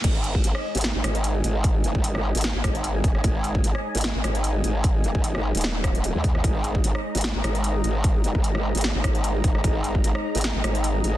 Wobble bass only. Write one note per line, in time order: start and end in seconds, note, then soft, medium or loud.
0.04 0.43 G#1 loud
0.44 0.53 G#1 loud
0.75 0.93 G#1 loud
0.95 1.03 G#1 medium
1.04 1.43 G#1 loud
1.44 1.83 G#1 medium
1.84 1.93 F#1 loud
1.95 2.33 G#1 loud
2.35 2.53 G#1 loud
2.55 2.63 G#1 loud
2.64 3.03 G#1 loud
3.04 3.23 F#1 loud
3.24 3.63 G#1 loud
3.64 3.73 G#1 loud
3.95 4.13 G#1 loud
4.15 4.23 G#1 medium
4.24 4.63 G#1 loud
4.64 5.03 G#1 medium
5.04 5.13 F#1 loud
5.15 5.53 G#1 loud
5.55 6.13 D#1 loud
6.15 6.43 D#2 loud
6.44 6.83 G#1 loud
6.84 6.93 G#1 loud
7.15 7.33 G#1 loud
7.35 7.43 G#1 medium
7.44 7.83 G#1 loud
7.84 8.23 G#1 medium
8.24 8.33 F#1 medium
8.35 8.73 G#1 loud
8.75 8.93 G#1 loud
8.95 9.03 G#1 loud
9.04 9.43 G#1 loud
9.64 10.03 G#1 loud
10.04 10.13 G#1 loud
10.35 10.53 G#1 loud
10.55 10.63 G#1 loud
10.64 11.03 G#1 loud
11.04 11.17 G#1 medium